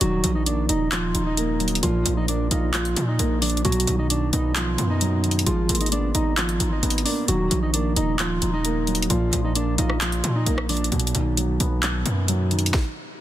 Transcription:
0.01 D#1 D#3 F#3 F#4, closed hi-hat
0.24 A#1 F3, closed hi-hat
0.35 D#4 D#5
0.46 A#3 D4 D5, closed hi-hat
0.69 D#1 D#4 D#5, closed hi-hat
0.92 F3 F4, clap, closed hi-hat
1.14 D#1 D#4, closed hi-hat
1.26 D#4 D#5
1.37 A#3, closed hi-hat
1.60 F#3, closed hi-hat
1.68 closed hi-hat
1.75 closed hi-hat
1.83 A#1 A#2 F3 F4, closed hi-hat
2.06 A#1 F3, closed hi-hat
2.17 D#4 D#5
2.28 A#3 D4 D5, closed hi-hat
2.51 A#1 D#4 F4 D#5, closed hi-hat
2.74 F3 F4, clap, closed hi-hat
2.85 closed hi-hat
2.96 A#2, closed hi-hat
3.08 D#4 D#5
3.19 A#1 A#3, closed hi-hat
3.42 F3 D4 D5, closed hi-hat, open hi-hat
3.50 closed hi-hat
3.57 closed hi-hat
3.65 B1 B2 F#3 F#4, closed hi-hat
3.72 closed hi-hat
3.80 closed hi-hat
3.87 B1 D#3, closed hi-hat
3.99 D#4 D#5
4.10 D4 D5, closed hi-hat
4.33 B1 B3 D#4 D#5, closed hi-hat
4.56 F3 F4, clap, closed hi-hat
4.78 F#2 B3, closed hi-hat
4.90 D#4 D#5
5.01 F#3, closed hi-hat
5.24 D#3, closed hi-hat
5.31 closed hi-hat
5.39 closed hi-hat
5.46 G#1 F3 G#3 F4, closed hi-hat
5.69 G#1 A#3, closed hi-hat
5.75 closed hi-hat
5.81 D#4 D#5, closed hi-hat
5.86 closed hi-hat
5.92 B3 D4 D5, closed hi-hat
6.15 G#1 D#4 D#5, closed hi-hat
6.37 F3 F4, clap, closed hi-hat
6.49 closed hi-hat
6.60 G#1 D#4, closed hi-hat
6.72 D#4 D#5
6.83 G#1 B3, closed hi-hat
6.90 closed hi-hat
6.98 closed hi-hat
7.05 A#3 D4 D5, open hi-hat
7.28 D#1 D#3 F#3 F#4, closed hi-hat
7.51 A#1 F3, closed hi-hat
7.63 D#4 D#5
7.74 A#3 D4 D5, closed hi-hat
7.96 D#1 D#4 D#5, closed hi-hat
8.19 F3 F4, clap, closed hi-hat
8.42 D#1 D#4, closed hi-hat
8.54 D#4 D#5
8.65 A#3, closed hi-hat
8.87 F#3, closed hi-hat
8.95 closed hi-hat
9.02 closed hi-hat
9.10 A#1 A#2 F3 F4, closed hi-hat
9.33 A#1 F3, closed hi-hat
9.44 D#4 D#5
9.55 A#3 D4 D5, closed hi-hat
9.78 A#1 D#4 F4 D#5, closed hi-hat
9.90 cross-stick
10.01 F3 F4, clap, closed hi-hat
10.12 closed hi-hat
10.24 A#2, closed hi-hat
10.36 D#4 D#5
10.46 A#1 A#3, closed hi-hat
10.58 cross-stick
10.69 F3 D4 D5, closed hi-hat, open hi-hat
10.77 closed hi-hat
10.84 closed hi-hat
10.92 B1 B2, closed hi-hat
11.00 closed hi-hat
11.07 closed hi-hat
11.15 B1 D#3, closed hi-hat
11.37 F#3, closed hi-hat
11.60 B1 B3, closed hi-hat
11.83 clap, closed hi-hat
12.06 F#2 B3, closed hi-hat
12.28 F#3, closed hi-hat
12.51 D#3, closed hi-hat
12.59 closed hi-hat
12.66 closed hi-hat
12.74 kick, snare

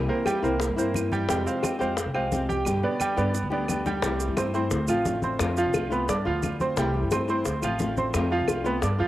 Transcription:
Already playing: C3 E3 A#3 C4 E4
0.09 A#3 A#4 C5, high bongo, high conga
0.26 E3 G3 A#3 C4 E4 G4 G5, high bongo, high conga, claves, maracas
0.42 C2 E3 A#3 C4 E4 A#4 C5, high bongo, high conga, maracas
0.60 muted nylon-string guitar stroke, high bongo, high conga, maracas
0.69 G2
0.76 E3 A#3 C4 E4 A#4 C5, high bongo, high conga, maracas
0.93 E3 A#3 C4 E4, high bongo, low bongo, high conga, claves, maracas
1.12 G3 G4 G5, high conga, maracas
1.28 F2 C3 F3 G3 G#3 C4 G4 G5, high bongo, maracas
1.46 C4 C5 F5, high bongo, high conga, maracas
1.62 F3 G#3 C4 G4, high bongo, high conga, claves, maracas
1.79 F2 F3 G#3 C4 G4 C5 F5, high bongo, maracas
1.97 muted nylon-string guitar stroke, high bongo, high conga, maracas
2.06 C2
2.14 F3 G#3 C4 G4 C5 F5, high bongo, high conga, claves
2.31 F3 G#3 C4 G4, high bongo, low bongo, high conga, maracas
2.49 G4 G5, high conga, maracas
2.65 G2 B2 D3 G3 B3 G4, high bongo, high conga, claves, maracas
2.83 B3 B4 D5, high bongo, high conga
2.99 D3 G3 B3 G4 G5, high conga, claves, maracas
3.16 G2 D3 G3 B3 G4 B4 D5, high bongo, high conga, maracas
3.34 muted nylon-string guitar stroke, low bongo, high conga, maracas
3.43 D2
3.50 D3 G3 B3 G4 B4 D5, low bongo, high conga
3.68 D3 G3 B3 G4, low bongo, high conga, claves, maracas
3.86 G3 G4 G5, low bongo, high conga, maracas
4.02 C2 C3 E3 G3 A3 C4 E4 G4 G5, high bongo, high conga, maracas
4.20 high bongo, high conga, maracas
4.28 G2
4.37 E3 A3 C4 E4 C5 C6, high bongo, high conga, claves, maracas
4.54 E3 A3 C4 E4 C5 C6, high bongo, maracas
4.71 D2, muted nylon-string guitar stroke, high bongo, high conga, maracas
4.88 A1 F3 A3 C4 F4 F5, high bongo, high conga, claves, maracas
5.05 D3 A3 C4 F4, high bongo, low bongo, high conga, maracas
5.22 C4 C5 C6, high conga, maracas
5.39 F2 D3 A3 C4 F4, high bongo, high conga, claves, maracas
5.57 F3 F4 F5, high bongo, high conga, maracas
5.66 C2
5.74 D3 A3 C4 F4, high bongo, high conga, claves, maracas
5.90 A3 B3 C4 F4 B4 B5, high bongo, high conga, maracas
6.08 G2 D4 D5 D6, muted nylon-string guitar stroke, high bongo, high conga, maracas
6.25 D2 F3 B3 F4 F5, high bongo, high conga
6.43 G3 B3 F4, high bongo, low bongo, high conga, claves, maracas
6.60 C4 C5 C6, high conga, maracas
6.77 C2 C3 E3 G3 A3 C4 E4 G4 G5, high bongo, high conga, maracas
6.94 high bongo, high conga
7.03 G2
7.11 E3 A3 C4 E4 C5 C6, high bongo, high conga, claves, maracas
7.28 E3 A3 C4 E4 C5 C6, high bongo, maracas
7.45 D2, muted nylon-string guitar stroke, high bongo, high conga, maracas
7.62 A1 F3 A3 C4 F4 F5, high bongo, high conga, claves, maracas
7.79 D3 A3 C4 F4, high bongo, low bongo, high conga, maracas
7.97 C4 C5 C6, high conga, maracas
8.14 F2 D3 A3 C4 F4, high bongo, high conga, claves, maracas
8.31 F3 F4 F5, high bongo, high conga
8.40 C2
8.48 D3 A3 C4 F4, high bongo, high conga, claves, maracas
8.64 A3 B3 C4 F4 B4 B5, high bongo, high conga, maracas
8.81 G2 D4 D5 D6, muted nylon-string guitar stroke, high bongo, high conga, maracas
8.98 F2 F3 B3 F4 F5, high bongo, high conga

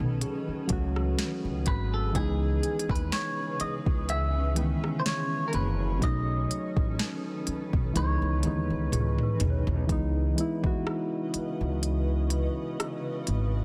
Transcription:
Already playing: D#3 F#3 A3 C#4 D#4 A4 B4 F#5
0.00 B1
0.21 G#4, closed hi-hat
0.48 muted upright bass stroke
0.67 C#2 F#3 A3 C#4, kick, closed hi-hat
0.72 F#4
0.96 cross-stick
1.19 snare, closed hi-hat
1.45 C#2
1.66 G#1 B4, kick, closed hi-hat
1.94 A4
2.13 C#2 C#3 E3 G#3 B3 C#4 G#4 B4, kick, closed hi-hat
2.18 D#4
2.63 closed hi-hat
2.79 closed hi-hat
2.89 D#2 B4, kick, cross-stick
2.95 closed hi-hat
3.12 C#5, snare, closed hi-hat
3.60 D#5, muted upright bass stroke, closed hi-hat
3.86 C#2, kick
4.09 C#5 E5, closed hi-hat
4.55 E3 G#3 B3 C#4, closed hi-hat
4.60 D#3
4.84 cross-stick
5.00 C5
5.06 C#5, snare, closed hi-hat
5.48 A#4
5.53 F#1 B4, closed hi-hat
6.00 B1 D#3 F#3 A3 C#4 A4 B4 D#5, kick, closed hi-hat
6.05 D#4
6.51 closed hi-hat
6.77 A1, kick
6.99 D#4, snare, closed hi-hat
7.47 muted upright bass stroke, closed hi-hat
7.73 B1, kick
7.93 C#2 E3 G#3 B3 D#4 C#5, closed hi-hat, high tom
7.98 D#4
8.22 C#2
8.42 D#2 D#3 G#3 B3, closed hi-hat, mid tom
8.47 E3 D#4
8.70 C#2
8.92 C#2 G#4, closed hi-hat, mid tom
9.19 mid tom
9.23 B4
9.40 B1, closed hi-hat, floor tom
9.50 C#5
9.67 B1, floor tom
9.87 C#2 C#3 E3 G#3 B3 C#4 B4 D#5, kick, closed hi-hat
9.92 D#4
10.35 E3 G#3 B3, closed hi-hat
10.40 E4
10.61 D#2 E3 G#3 B3, kick
10.66 F#4
10.87 cross-stick
11.34 muted upright bass stroke, closed hi-hat
11.61 C#2
11.83 closed hi-hat
12.30 closed hi-hat
12.80 cross-stick, closed hi-hat
13.27 G#1, closed hi-hat

